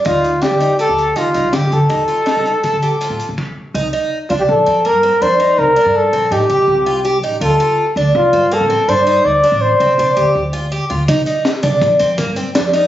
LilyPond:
<<
  \new Staff \with { instrumentName = "Trumpet" } { \time 5/4 \key c \dorian \tempo 4 = 164 f'4 g'4 a'4 f'4 g'8 a'8~ | a'1 r4 | r4. f'16 g'16 a'4 bes'4 c''4 | bes'4 a'4 g'2 r4 |
a'4. r8 f'4 a'4 c''4 | d''4 c''2 r2 | r1 r4 | }
  \new Staff \with { instrumentName = "Twelve-string acoustic guitar" } { \time 5/4 \key c \dorian ees'4 d'8 ees'8 g'4 ees'8 ees'8 g'4 | ees'8 f'8 ees'4 a'8 g'8 f'4 r4 | ees'8 ees'4 d'4 c'8 bes8 c'8 d'8 ees'8~ | ees'8 d'4 c'8 ees'8 g'4 f'8 g'8 ees'8 |
f'8 f'4 d'4 c'8 bes8 c'8 d'8 ees'8~ | ees'8 d'4 c'8 d'8 g'4 f'8 g'8 f'8 | ees'8 ees'4 d'4 c'8 bes8 c'8 d'8 ees'8 | }
  \new Staff \with { instrumentName = "Upright bass" } { \clef bass \time 5/4 \key c \dorian d,4~ d,16 d,8 r8 d,8. ees,8 c,8 d8 d16 r16 | ees,8 r8. c,8 r8 d8 r8 a,16 r16 a,16 r4 | c,8 r4 c,8 bes,,16 r16 f,8. g,8 r16 f,4 | c,8 r16 g,8. bes,,8 a,16 r16 c,16 r16 c,4. a,,8 |
d,8 r4 d,8 c,16 r16 g,8. a,,8 r16 g,4 | d,8 r16 a,,8. c,8 c16 r16 d,16 r16 d,4. d,8 | c,8 r4 c,8 bes,,16 r16 f,8. g,8 r16 f,4 | }
  \new DrumStaff \with { instrumentName = "Drums" } \drummode { \time 5/4 <hh bd>8 hh8 <hh sn>8 hh8 hh8 hh8 hh8 hh8 <hh sn>8 hh8 | <hh bd>8 hh8 <hh sn>8 hh8 <hh bd>8 hh8 hh8 hh8 <cymc bd>4 | r4 r4 r4 r4 r4 | r4 r4 r4 r4 r4 |
r4 r4 r4 r4 r4 | r4 r4 r4 r4 r4 | <hh bd>8 hh8 <hh sn>8 <hh bd>8 <hh bd>8 hh8 <hh bd>8 hh8 <hh sn>8 <hh sn>8 | }
>>